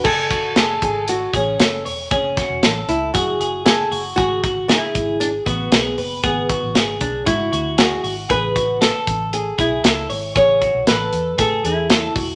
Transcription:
<<
  \new Staff \with { instrumentName = "Clean electric guitar" } { \time 4/4 \key fis \minor \tempo 4 = 116 gis'8 fis'8 a'4. gis'8 a'8 cis''8 | gis'8 fis'8 a'4 gis'8 gis'8 a'8 fis'8 | gis'8 fis'8 gis'4. fis'8 gis'8 b'8 | gis'8 fis'8 gis'4 fis'8 fis'8 gis'8 fis'8 |
gis'8 fis'8 a'4. gis'8 a'8 cis''8 | gis'8 fis'8 a'4 gis'8 gis'8 a'8 fis'8 | }
  \new Staff \with { instrumentName = "Nylon-string guitar" } { \time 4/4 \key fis \minor a'4 gis'8 gis'8 fis'8 cis'4 r8 | cis'4. e'8 fis'4 gis'8. r16 | fis'4 e'4 d'8 b4 r8 | b4. d'8 e'4 fis'8. r16 |
b'4 a'4 gis'8 e'4 r8 | cis''4 b'4 a'8 e'4 r8 | }
  \new Staff \with { instrumentName = "Fingered electric bass" } { \clef bass \time 4/4 \key fis \minor fis,,4 fis,,8 gis,,4 a,,8 fis,,8 e,,8 | fis,,8. e,,16 a,,8 cis,8 fis,8 fis,,4 fis,,8 | gis,,4~ gis,,16 r16 gis,,4 a,,8 b,,8 fis,,8 | gis,,8. a,,16 gis,,8 b,,8 gis,8 d,4 gis,,8 |
a,,4~ a,,16 r16 a,,4 b,,8 cis,8 gis,,8 | a,,8. b,,16 a,,8 e,8 a,8 e,4 e,,8 | }
  \new DrumStaff \with { instrumentName = "Drums" } \drummode { \time 4/4 <cymc bd>8 <hh bd>8 <hh sn>8 <hh bd>8 hh8 <hh bd>8 <hh sn>8 hho8 | <hh bd>8 <hh bd sn>8 <hh sn>8 hh8 <hh bd>8 hh8 <hh sn>8 hho8 | <hh bd>8 <hh bd>8 <hh sn>8 <hh bd>8 hh8 <hh bd>8 <hh sn>8 hho8 | <hh bd>8 <hh bd>8 <hh sn>8 <hh bd>8 <hh bd>8 hh8 <hh sn>8 hho8 |
<hh bd>8 <hh bd>8 <hh sn>8 <hh bd>8 hh8 <hh bd>8 <hh sn>8 hho8 | <hh bd>8 <hh bd>8 <hh sn>8 hh8 <hh bd>8 hh8 <hh sn>8 <hho bd>8 | }
>>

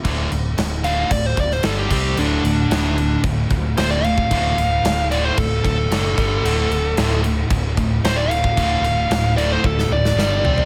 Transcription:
<<
  \new Staff \with { instrumentName = "Lead electric guitar" } { \time 4/4 \key d \mixolydian \tempo 4 = 112 r4. f''8 d''16 c''16 d''16 c''16 a'16 g'16 g'8 | d'2 r4 c''16 d''16 f''8~ | f''4. d''16 c''16 a'8 a'4.~ | a'4. r4. c''16 d''16 f''8~ |
f''4. d''16 c''16 a'8 d''4. | }
  \new Staff \with { instrumentName = "Distorted electric guitar" } { \clef bass \time 4/4 \key d \mixolydian r1 | <d, a, d a fis'>2.~ <d, a, d a fis'>8 <d, a, d a fis'>8 | <d, a, d a fis'>2.~ <d, a, d a fis'>8 r8 | <d, a, d a fis'>2.~ <d, a, d a fis'>8 <d, a, d a fis'>8 |
<d, a, d a fis'>2. r4 | }
  \new Staff \with { instrumentName = "Distorted electric guitar" } { \clef bass \time 4/4 \key d \mixolydian <d, a, d>8 <d, a,>8 <d, a,>8 <d, a, d>8 <d, a,>8 <d, a,>8 <g, d g>8 <c g c'>8 | <d, a, d>8 <d, a,>8 <d, a, d>8 <d, a,>8 <d, a,>8 <d, a,>8 <d, a, d>8 <d, a,>8 | <d, a, d>8 <d, a,>8 <d, a,>8 <d, a, d>8 <d, a,>8 <d, a,>8 <d, a, d>8 <g, d g>8 | <d, a, d>8 <d, a,>8 <d, a, d>8 <d, a,>8 <d, a,>8 <d, a,>8 <d, a, d>8 <d, a,>8 |
<d, a, d>8 <d, a,>8 <d, a,>8 <d, a, d>8 <d, a,>8 <d, a,>8 <g, d g>8 <c g c'>8 | }
  \new Staff \with { instrumentName = "Overdriven electric guitar" } { \clef bass \time 4/4 \key d \mixolydian <d, a, d>8 <d, a,>8 <d, a,>8 <d, a, d>8 <d, a,>8 <d, a,>8 <g, d g>8 <c g c'>8 | <d, a, d>8 <d, a,>8 <d, a, d>8 <d, a,>8 <d, a,>8 <d, a,>8 <d, a, d>8 <d, a,>8 | <d, a, d>8 <d, a,>8 <d, a,>8 <d, a, d>8 <d, a,>8 <d, a,>8 <d, a, d>8 <g, d g>8 | <d, a, d>8 <d, a,>8 <d, a, d>8 <d, a,>8 <d, a,>8 <d, a,>8 <d, a, d>8 <d, a,>8 |
<d, a, d>8 <d, a,>8 <d, a,>8 <d, a, d>8 <d, a,>8 <d, a,>8 <g, d g>8 <c g c'>8 | }
  \new Staff \with { instrumentName = "Fingered electric bass" } { \clef bass \time 4/4 \key d \mixolydian d,,8 d,,8 d,,4 d,,8 d,,8 g,,8 c,8 | d,,8 d,,8 d,,4 d,,8 d,,8 d,,4 | d,,8 d,,8 d,,4 d,,8 d,,8 fis,,8 g,,8 | d,,8 d,,8 d,,4 d,,8 d,,8 d,,4 |
d,,8 d,,8 d,,4 d,,8 d,,8 g,,8 c,8 | }
  \new DrumStaff \with { instrumentName = "Drums" } \drummode { \time 4/4 <cymc bd>8 cymc8 <cymc sn>8 cymc8 <cymc bd>8 <cymc bd>16 sn16 <cymc sn>8 <cymc bd>8 | cymc8 cymc8 <cymc sn>8 cymc8 <cymc bd>8 <cymc bd>8 <cymc sn>8 cymc16 bd16 | <cymc bd>8 cymc8 <cymc sn>8 cymc8 <cymc bd>8 <cymc bd>8 <cymc sn>8 <cymc bd>8 | cymc8 cymc8 <cymc sn>8 cymc8 <cymc bd>8 <cymc bd>8 <cymc sn>8 cymc16 bd16 |
<cymc bd>8 cymc8 <cymc sn>8 cymc8 bd16 sn8 sn16 sn8 tomfh16 tomfh16 | }
>>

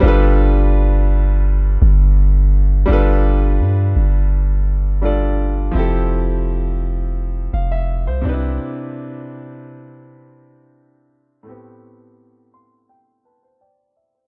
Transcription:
<<
  \new Staff \with { instrumentName = "Grand piano" } { \time 4/4 \key g \mixolydian \tempo 4 = 84 << { r1 | r1 | r2 r8 f''16 e''8 c''8 r16 | r1 |
r4. c'''8 g''8 <b' a''>16 c''16 <d'' g''>8 e''16 c''16 | } \\ { <g d' f' a' b'>1 | <g d' f' a' b'>2. <g d' f' a' d''>4 | <f c' e' g' a'>2.~ <f c' e' g' a'>8 <c c' d' dis' e' b'>8~ | <c c' d' dis' e' b'>2.~ <c c' d' dis' e' b'>8 r8 |
<a, a b c' g'>1 | } >> }
  \new Staff \with { instrumentName = "808-style bass" } { \clef bass \time 4/4 \key g \mixolydian g,,2~ g,,8 g,,4. | g,,4 g,8 g,,2~ g,,8 | f,,2~ f,,8 f,,8. c,16 c,8 | r1 |
r1 | }
>>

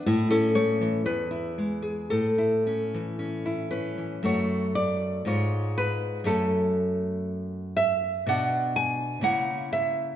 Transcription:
\new Staff \with { instrumentName = "Nylon-string guitar" } { \time 2/4 \key a \major \tempo 4 = 59 << { e'16 a'16 cis''8 b'4 | a'4 r8 b'8 | \key fis \minor cis''8 d''8 cis''8 ces''8 | a'4. e''8 |
fis''8 gis''8 fis''8 e''8 | } \\ { a,16 cis'16 a16 e16 e,16 e'16 gis16 gis'16 | a,16 e'16 cis'16 e16 cis'16 e'16 cis'16 e16 | <fis, a fis'>4 <aes, aes f'>4 | <fis, a cis'>2 |
<b, b d'>4 <cis ais e'>4 | } >> }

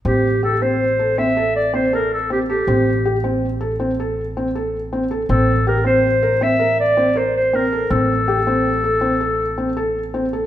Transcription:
<<
  \new Staff \with { instrumentName = "Clarinet" } { \time 7/4 \key a \phrygian \tempo 4 = 160 g'4 a'8 c''4. e''4 d''8 c''8 bes'8 a'8 g'8 g'8~ | g'2~ g'8 r1 r8 | a'4 bes'8 c''4. e''4 d''4 c''8 c''8 bes'4 | a'1. r4 | }
  \new Staff \with { instrumentName = "Felt piano" } { \time 7/4 \key a \phrygian c'4 g'8 c'4 a'8 c'8 a'4 c'8 a'4 c'8 a'8 | c'4 g'8 c'4 a'8 c'8 a'4 c'8 a'4 c'8 a'8 | c'4 g'8 c'4 bes'8 c'8 bes'4 c'8 bes'4 c'8 a'8 | c'4 g'8 c'4 a'8 c'8 a'4 c'8 a'4 c'8 a'8 | }
  \new Staff \with { instrumentName = "Upright bass" } { \clef bass \time 7/4 \key a \phrygian a,,1.~ a,,4 | a,,1.~ a,,4 | a,,1.~ a,,4 | a,,1.~ a,,4 | }
>>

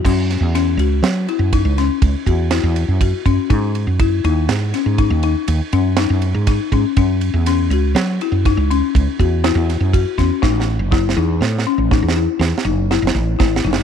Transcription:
<<
  \new Staff \with { instrumentName = "Marimba" } { \time 7/4 \key fis \dorian \tempo 4 = 121 cis'4 cis'8 fis'4 e'8 dis'8 cis'4 fis'8 e'4 fis'8 cis'8 | dis'4 e'8 dis'4 cis'8 dis'8 dis'4 cis'8 dis'4 dis'8 cis'8 | cis'4 cis'8 fis'4 e'8 dis'8 cis'4 fis'8 e'4 fis'8 cis'8 | dis'4 e'8 dis'4 cis'8 dis'8 e'4 dis'8 e'4 e'8 dis'8 | }
  \new Staff \with { instrumentName = "Fretless electric bass" } { \clef bass \time 7/4 \key fis \dorian fis,8. e,8. cis,8 fis8 r16 fis,8 cis,8 r16 cis,16 r16 e,8. e,8 fis,8 r16 fis,16 r16 | gis,8. fis,8. dis,8 gis,8 r16 gis,8 dis,8 r16 dis,16 r16 fis,8. fis,8 gis,8 r16 gis,16 r16 | fis,8. e,8. cis,8 fis8 r16 fis,8 cis,8 r16 cis,16 r16 e,8. e,8 fis,8 r16 e,16 r16 | a,,8. fis,,8. e,8 a,8 r16 a,,8 e,8 r16 e,16 r16 fis,,8. fis,,16 a,,8 gis,,8 fis,,8 | }
  \new DrumStaff \with { instrumentName = "Drums" } \drummode { \time 7/4 <cymc bd>8 <cymr sn>8 <cymr sn>8 cymr8 <cymr sn>8 cymr8 <bd cymr>8 <cymr sn>8 <bd cymr>8 <bd cymr>8 <cymr sn>8 cymr8 <bd cymr>8 <bd cymr>8 | <bd cymr>8 cymr8 <bd cymr>8 cymr8 <cymr sn>8 <cymr sn>8 <bd cymr>8 cymr8 cymr8 cymr8 <cymr sn>8 cymr8 <bd cymr sn>8 <bd cymr>8 | <bd cymr>8 cymr8 <cymr sn>8 cymr8 <cymr sn>8 cymr8 <bd cymr sn>8 cymr8 <bd cymr>8 <bd cymr>8 <cymr sn>8 <cymr sn>8 <bd cymr>8 <bd cymr sn>8 | \tuplet 3/2 { <bd sn>8 sn8 r8 <bd sn>8 sn8 r8 sn8 sn8 r8 <bd sn>8 sn8 r8 sn8 sn8 r8 sn8 sn8 r8 <bd sn>8 sn8 sn8 } | }
>>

